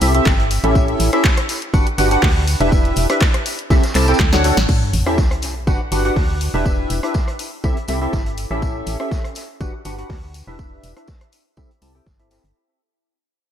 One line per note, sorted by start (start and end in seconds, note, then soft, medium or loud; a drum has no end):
0.01 0.21 C2 medium
0.01 0.13 C4 medium
0.01 0.13 E4 medium
0.01 0.13 G4 medium
0.01 0.13 A4 medium
0.01 0.13 E5 loud
0.01 open hi-hat loud
0.01 tambourine medium
0.15 0.34 C4 medium
0.15 0.34 E4 medium
0.15 0.34 G4 medium
0.15 0.34 A4 medium
0.15 0.34 E5 medium
0.15 closed hi-hat medium
0.25 0.59 G1 loud
0.25 kick loud
0.25 snare loud
0.25 clap loud
0.25 tambourine medium
0.39 closed hi-hat soft
0.51 open hi-hat loud
0.51 tambourine medium
0.64 0.96 A1 loud
0.64 1.10 C#4 loud
0.64 1.10 E4 medium
0.64 1.10 G4 medium
0.64 1.10 A4 medium
0.64 1.10 E5 loud
0.64 closed hi-hat medium
0.75 kick loud
0.75 tambourine medium
0.88 closed hi-hat soft
1.00 1.10 A1 loud
1.00 open hi-hat loud
1.00 tambourine medium
1.13 1.24 C#4 medium
1.13 1.24 E4 medium
1.13 1.24 G4 medium
1.13 1.24 A4 medium
1.13 1.24 E5 medium
1.13 cross-stick medium
1.13 closed hi-hat medium
1.24 kick loud
1.24 snare loud
1.24 clap loud
1.24 tambourine medium
1.37 cross-stick medium
1.37 closed hi-hat soft
1.37 closed hi-hat medium
1.49 snare medium
1.49 open hi-hat loud
1.49 tambourine medium
1.62 closed hi-hat medium
1.74 1.84 G1 medium
1.74 1.87 D4 loud
1.74 1.87 F#4 medium
1.74 1.87 G4 medium
1.74 1.87 B4 medium
1.74 1.87 F#5 loud
1.74 kick loud
1.74 tambourine loud
1.87 closed hi-hat medium
1.98 2.17 G1 medium
1.98 2.09 D4 medium
1.98 2.09 F#4 medium
1.98 2.09 G4 medium
1.98 2.09 B4 medium
1.98 2.09 F#5 loud
1.98 open hi-hat loud
1.98 tambourine medium
2.11 2.31 D4 medium
2.11 2.31 F#4 medium
2.11 2.31 G4 medium
2.11 2.31 B4 medium
2.11 2.31 F#5 medium
2.11 closed hi-hat soft
2.11 closed hi-hat medium
2.23 2.56 D2 loud
2.23 kick loud
2.23 snare loud
2.23 clap loud
2.23 open hi-hat medium
2.48 open hi-hat loud
2.48 tambourine medium
2.60 2.92 E1 loud
2.60 3.07 D4 loud
2.60 3.07 E4 medium
2.60 3.07 G4 medium
2.60 3.07 B4 medium
2.60 3.07 E5 loud
2.60 closed hi-hat medium
2.72 kick loud
2.72 tambourine loud
2.85 closed hi-hat soft
2.96 3.07 E1 loud
2.96 open hi-hat loud
2.96 tambourine medium
3.09 3.21 D4 medium
3.09 3.21 E4 medium
3.09 3.21 G4 medium
3.09 3.21 B4 medium
3.09 3.21 E5 medium
3.09 cross-stick medium
3.09 closed hi-hat soft
3.09 closed hi-hat medium
3.21 kick loud
3.21 snare loud
3.21 clap loud
3.21 tambourine loud
3.34 cross-stick medium
3.34 closed hi-hat soft
3.34 closed hi-hat medium
3.46 open hi-hat loud
3.46 tambourine medium
3.59 closed hi-hat medium
3.70 3.80 C2 medium
3.70 3.83 C4 loud
3.70 3.83 E4 medium
3.70 3.83 G4 medium
3.70 3.83 A4 medium
3.70 3.83 E5 loud
3.70 kick loud
3.70 snare loud
3.70 tambourine medium
3.83 snare loud
3.83 closed hi-hat medium
3.83 tambourine medium
3.94 4.14 C2 medium
3.94 4.06 C4 medium
3.94 4.06 E4 medium
3.94 4.06 G4 medium
3.94 4.06 A4 medium
3.94 4.06 A5 medium
3.94 snare medium
3.94 clap medium
3.94 open hi-hat loud
3.94 tambourine medium
4.02 snare medium
4.02 tambourine medium
4.08 4.18 C4 medium
4.08 4.18 E4 medium
4.08 4.18 G4 medium
4.08 4.18 A4 medium
4.08 4.18 G5 medium
4.08 snare medium
4.08 closed hi-hat medium
4.08 tambourine medium
4.14 snare medium
4.14 tambourine medium
4.20 4.52 D2 loud
4.20 kick loud
4.20 snare medium
4.20 clap loud
4.20 closed hi-hat soft
4.33 4.42 D4 medium
4.33 4.42 F#4 medium
4.33 4.42 A4 medium
4.33 4.42 C#5 medium
4.33 4.42 F#5 loud
4.33 snare medium
4.33 closed hi-hat soft
4.33 tambourine medium
4.44 4.57 D4 medium
4.44 4.57 F#4 medium
4.44 4.57 A4 medium
4.44 4.57 C#5 medium
4.44 4.57 F#5 loud
4.44 open hi-hat loud
4.44 tambourine medium
4.57 4.66 A1 loud
4.57 snare medium
4.57 closed hi-hat medium
4.69 kick loud
4.69 crash medium
4.69 tambourine medium
4.69 sub drop medium
4.93 5.03 A1 loud
4.93 open hi-hat loud
4.93 tambourine medium
5.06 5.18 C#4 medium
5.06 5.18 E4 medium
5.06 5.18 G4 medium
5.06 5.18 A4 medium
5.06 5.18 E5 medium
5.06 cross-stick medium
5.18 kick loud
5.18 snare loud
5.18 tambourine medium
5.31 cross-stick medium
5.31 closed hi-hat soft
5.42 snare soft
5.42 open hi-hat loud
5.42 tambourine medium
5.67 5.77 G1 medium
5.67 5.80 D4 medium
5.67 5.80 F#4 medium
5.67 5.80 G4 medium
5.67 5.80 B4 medium
5.67 5.80 F#5 loud
5.67 kick loud
5.67 tambourine medium
5.92 6.11 G1 medium
5.92 6.03 D4 medium
5.92 6.03 F#4 medium
5.92 6.03 G4 medium
5.92 6.03 B4 medium
5.92 6.03 F#5 loud
5.92 open hi-hat loud
5.92 tambourine medium
6.05 6.24 D4 medium
6.05 6.24 F#4 medium
6.05 6.24 G4 medium
6.05 6.24 B4 medium
6.05 6.24 F#5 medium
6.05 closed hi-hat soft
6.16 6.49 D2 loud
6.16 kick loud
6.16 snare loud
6.16 open hi-hat medium
6.41 open hi-hat loud
6.41 tambourine medium
6.54 6.86 E1 loud
6.54 7.00 D4 loud
6.54 7.00 E4 medium
6.54 7.00 G4 medium
6.54 7.00 B4 medium
6.54 7.00 E5 loud
6.66 kick loud
6.66 tambourine medium
6.90 7.00 E1 loud
6.90 open hi-hat loud
6.90 tambourine medium
7.03 7.15 D4 medium
7.03 7.15 E4 medium
7.03 7.15 G4 medium
7.03 7.15 B4 medium
7.03 7.15 E5 medium
7.03 cross-stick medium
7.03 closed hi-hat soft
7.14 kick loud
7.14 snare loud
7.14 tambourine medium
7.28 cross-stick medium
7.28 closed hi-hat soft
7.39 open hi-hat loud
7.39 tambourine medium
7.64 7.74 C2 medium
7.64 7.77 C4 medium
7.64 7.77 E4 medium
7.64 7.77 G4 medium
7.64 7.77 A4 medium
7.64 7.77 E5 loud
7.64 kick loud
7.64 tambourine medium
7.77 closed hi-hat soft
7.88 8.08 C2 medium
7.88 8.00 C4 medium
7.88 8.00 E4 medium
7.88 8.00 G4 medium
7.88 8.00 A4 medium
7.88 8.00 E5 medium
7.88 open hi-hat loud
7.88 tambourine medium
8.02 8.21 C4 medium
8.02 8.21 E4 medium
8.02 8.21 G4 medium
8.02 8.21 A4 medium
8.02 8.21 E5 medium
8.13 8.46 G1 medium
8.13 kick loud
8.13 snare loud
8.13 tambourine medium
8.26 closed hi-hat soft
8.37 open hi-hat loud
8.37 tambourine medium
8.51 8.82 A1 loud
8.51 8.97 C#4 medium
8.51 8.97 E4 medium
8.51 8.97 G4 medium
8.51 8.97 A4 medium
8.51 8.97 E5 loud
8.62 kick loud
8.62 tambourine medium
8.86 8.97 A1 medium
8.86 open hi-hat loud
8.86 tambourine medium
9.00 9.11 C#4 medium
9.00 9.11 E4 medium
9.00 9.11 G4 medium
9.00 9.11 A4 medium
9.00 9.11 E5 medium
9.00 cross-stick medium
9.11 kick loud
9.11 snare loud
9.11 tambourine medium
9.24 cross-stick medium
9.24 closed hi-hat soft
9.35 snare soft
9.35 open hi-hat loud
9.35 tambourine medium
9.61 9.71 G1 medium
9.61 9.74 D4 medium
9.61 9.74 F#4 medium
9.61 9.74 G4 medium
9.61 9.74 B4 medium
9.61 9.74 F#5 loud
9.61 kick loud
9.61 tambourine medium
9.85 10.04 G1 medium
9.85 9.96 D4 medium
9.85 9.96 F#4 medium
9.85 9.96 G4 medium
9.85 9.96 B4 medium
9.85 9.96 F#5 medium
9.85 open hi-hat loud
9.85 tambourine medium
9.98 10.17 D4 medium
9.98 10.17 F#4 medium
9.98 10.17 G4 medium
9.98 10.17 B4 medium
9.98 10.17 F#5 medium
9.98 closed hi-hat soft
10.09 10.42 D2 medium
10.09 kick loud
10.09 snare loud
10.09 open hi-hat medium
10.34 open hi-hat loud
10.34 tambourine medium
10.47 10.79 E1 loud
10.47 10.93 D4 medium
10.47 10.93 E4 medium
10.47 10.93 G4 medium
10.47 10.93 B4 medium
10.47 10.93 E5 loud
10.59 kick loud
10.59 tambourine medium
10.83 10.93 E1 medium
10.83 open hi-hat loud
10.83 tambourine medium
10.96 11.08 D4 medium
10.96 11.08 E4 medium
10.96 11.08 G4 medium
10.96 11.08 B4 medium
10.96 11.08 E5 medium
10.96 cross-stick medium
10.96 closed hi-hat soft
11.07 kick loud
11.07 snare loud
11.07 tambourine medium
11.21 cross-stick medium
11.21 closed hi-hat soft
11.32 open hi-hat loud
11.32 tambourine medium
11.57 11.67 C2 medium
11.57 11.70 C4 medium
11.57 11.70 E4 medium
11.57 11.70 G4 medium
11.57 11.70 A4 medium
11.57 11.70 E5 loud
11.57 kick loud
11.57 tambourine medium
11.71 closed hi-hat soft
11.82 12.01 C2 medium
11.82 11.93 C4 medium
11.82 11.93 E4 medium
11.82 11.93 G4 medium
11.82 11.93 A4 medium
11.82 11.93 A5 medium
11.82 open hi-hat loud
11.82 tambourine medium
11.95 12.06 C4 medium
11.95 12.06 E4 medium
11.95 12.06 G4 medium
11.95 12.06 A4 medium
11.95 12.06 G5 medium
12.06 12.39 G1 loud
12.06 kick loud
12.06 snare loud
12.06 tambourine medium
12.19 12.29 C4 medium
12.19 12.29 E4 medium
12.19 12.29 G4 medium
12.19 12.29 A4 medium
12.19 12.29 E5 medium
12.19 closed hi-hat soft
12.31 12.44 C4 medium
12.31 12.44 E4 medium
12.31 12.44 G4 medium
12.31 12.44 A4 medium
12.31 12.44 E5 medium
12.31 snare loud
12.31 open hi-hat loud
12.31 tambourine medium
12.44 12.53 G1 loud
12.44 closed hi-hat soft